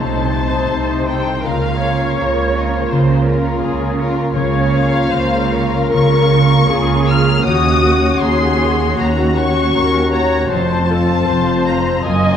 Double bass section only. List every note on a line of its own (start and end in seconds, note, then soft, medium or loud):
0.00 0.62 C2 medium
0.71 1.37 C2 medium
1.46 2.10 C#2 medium
2.19 2.83 C#2 medium
2.92 3.56 C#2 medium
3.64 4.29 C#2 medium
4.37 5.04 C#2 medium
5.13 5.84 C#2 medium
5.94 6.61 C#2 medium
6.70 7.36 C#2 medium
7.45 8.13 D#2 medium
8.22 8.90 D#2 medium
8.99 9.66 D#2 medium
9.75 10.43 D#2 medium
10.51 11.19 F1 medium
11.29 11.96 F1 medium
12.06 12.37 F#1 medium